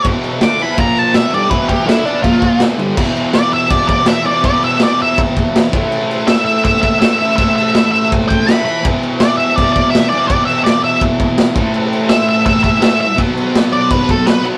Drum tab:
CC |xxxxxxxx|xxxxxxxx|xxxxxxxx|xxxxxxxx|
SD |--o---o-|--o---o-|--o---o-|--o---o-|
BD |o---o---|oo--oo--|o---oo--|o---oo-o|

CC |xxxxxxxx|xxxxxxxx|xxxxxxxx|xxxxxxxx|
SD |--o---o-|--o---o-|--o---o-|--o---o-|
BD |----oo--|o---oo--|o---oo--|o---oo-o|

CC |xxxxxxxx|xxxxxxxx|
SD |--o---o-|--o---o-|
BD |----oo--|o---oo--|